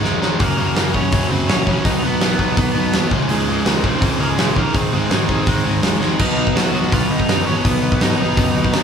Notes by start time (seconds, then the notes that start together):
0.03 F1 G#2 D#3 G#3, snare
0.22 G#2 D#3 G#3, snare
0.40 F#1 F#2 C#3 F#3 A#3 A#4, kick, open hi-hat
0.58 F#1 F#2 C#3 F#3
0.76 F#1 F#2 C#3 F#3, snare, open hi-hat
0.94 F#1 F#2 C#3 F#3 C#4 C#5, kick
1.12 F#1 F#2 C#3 F#3, kick, open hi-hat
1.30 F#1 F#2 C#3 F#3 C4 C5
1.48 A#1 F#2 C#3 F#3 C#4 C#5, snare, open hi-hat
1.67 F#2 C#3 F#3, kick
1.85 B1 B2 F#3 B3 D#4 D#5, kick, open hi-hat
2.03 B1 B2 F#3 B3 B4
2.21 B1 B2 F#3 B3 B4, snare, open hi-hat
2.39 B1 B2 F#3 B3, kick
2.57 B1 B2 F#3 B3 B4, kick, open hi-hat
2.75 B1 B2 F#3 B3
2.93 D#2 B2 F#3 B3, snare, open hi-hat
3.11 C#2 G#2 C#3, kick
3.29 C#2 G#2 C#3 G#3 G#4, open hi-hat
3.48 C#2 G#2 C#3
3.66 C#2 G#2 C#3, snare, open hi-hat
3.83 C#2 G#2 C#3 C4 C5, kick
4.01 C#2 G#2 C#3, kick, open hi-hat
4.19 C#2 G#2 C#3 A#3 A#4
4.29 G#3 G#4
4.37 A#1 C#2 G#2 C#3, snare, open hi-hat
4.56 C#2 G#2 C#3 A#3 A#4, kick
4.74 G#1 G#2 D#3 G#3 C4 C5, kick, open hi-hat
4.93 G#1 G#2 D#3 G#3
5.10 G#1 G#2 D#3 G#3, snare, open hi-hat
5.29 G#1 G#2 D#3 G#3, kick
5.46 G#1 G#2 D#3 G#3, kick, open hi-hat
5.65 G#1 G#2 D#3 G#3
5.83 F#1 G#2 D#3 G#3, snare, open hi-hat
6.02 G#2 D#3 G#3, snare
6.19 B1 B2 F#3 B3 D#4 D#5, kick, crash
6.38 B1
6.47 kick
6.55 B1 B2 F#3 B3 F#4 F#5, snare, open hi-hat
6.74 B1 B2 F#3 B3
6.92 B1 B2 F#3 B3 F4 F5, kick, open hi-hat
7.10 B1 D#4 D#5
7.20 kick
7.28 F#2 B2 F#3 B3, snare, open hi-hat
7.46 G#1 B2 F#3 B3 C#4 C#5
7.64 B1 B2 F#3 B3 B4, kick, open hi-hat
7.84 B1
7.92 kick
8.01 G#2 B2 F#3 B3 D#4 D#5, snare, open hi-hat
8.19 B1 B2 F#3 B3
8.37 F#2 B2 F#3 B3, kick, open hi-hat
8.56 D#2
8.64 kick
8.73 G1 B2 F#3 B3, snare, open hi-hat